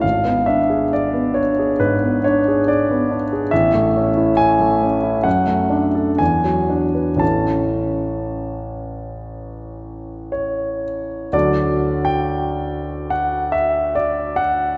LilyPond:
\new Staff \with { instrumentName = "Grand piano" } { \time 4/4 \key a \major \tempo 4 = 67 << { f''8 e''8 d''8 cis''8 b'8 cis''8 d''4 | e''4 gis''4 fis''4 gis''4 | a''2. cis''4 | \key d \major d''8. g''4~ g''16 fis''8 e''8 d''8 fis''8 | } \\ { gis,,16 b16 d'16 gis'8 b16 d'16 gis'16 gis,16 b16 d'16 gis'8 b16 d'16 gis'16 | a,,16 a16 cis'16 e'8 a16 cis'16 e'16 fis,16 a16 d'16 a'16 e,16 fis16 d'16 b'16 | <a,, e cis' a'>1 | <d, fis d' a'>1 | } >> }